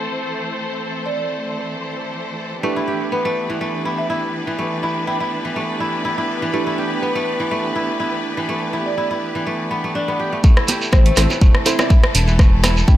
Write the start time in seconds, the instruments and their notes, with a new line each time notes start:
Already playing: string section E3 A3 C4 A4 C5, synth keys C4 E4 A4 C5
1.06 marimba D5
1.17 marimba D5
2.63 kora A3, string section B3 D4 G4 B4, synth keys D4 E4 G4 B4
2.76 kora E4
2.88 kora G4
3.12 kora B3, marimba B4
3.25 kora A3, marimba B4
3.50 kora E3
3.61 kora A3
3.85 kora E4
3.98 marimba E5
4.10 kora E4, marimba E5
4.47 kora E3
4.59 kora A3
4.83 kora E4
5.07 kora E4, marimba G5
5.20 kora E4
5.45 kora E3
5.56 kora A3
5.80 kora E4
6.05 kora E4
6.18 kora E4
6.42 kora E3
6.54 kora A3, synth keys D4 E4 G4 B4
6.67 kora E4
6.78 kora G4
7.02 kora B3, marimba B4
7.15 kora A3, marimba B4
7.40 kora E3
7.51 kora A3
7.76 kora E4
8.00 kora E4
8.37 kora E3
8.49 kora A3
8.73 kora E4
8.86 marimba D5
8.98 kora E4, marimba D5
9.11 kora E4
9.35 kora E3
9.47 kora A3
9.71 kora B3
9.84 kora A3
9.95 kora D4
10.08 kora B3
10.19 kora G4
10.33 kora A3
10.44 string section C3 E3 A3 E4 A4, kora A3, kick, shekere
10.57 kora E4, cross-stick
10.68 kora G4, open hi-hat, low bongo, shekere
10.82 shekere
10.92 analog synth bass A1, kora C4, marimba C5, kick, cross-stick, shekere
11.06 kora A3, marimba C5, open hi-hat
11.16 analog synth bass A1, synth keys C4 E4 A4 C5, cross-stick, open hi-hat, high bongo, shekere
11.30 kora E3, low bongo, shekere
11.41 analog synth bass E1, kora A3, kick, shekere
11.55 cross-stick
11.66 synth keys C4 E4 A4 C5, kora E4, open hi-hat, high bongo, shekere
11.79 synth keys C4 E4 A4 D5, marimba E5, cross-stick, low bongo, shekere
11.90 kora E4, marimba E5, kick, shekere
12.03 cross-stick
12.15 analog synth bass E1, open hi-hat, shekere
12.28 kora E3, shekere
12.39 kora A3, kick, cross-stick, shekere
12.63 kora E4, cross-stick, open hi-hat, low bongo, shekere
12.77 shekere
12.87 analog synth bass A1, kora E4, marimba G5, kick, shekere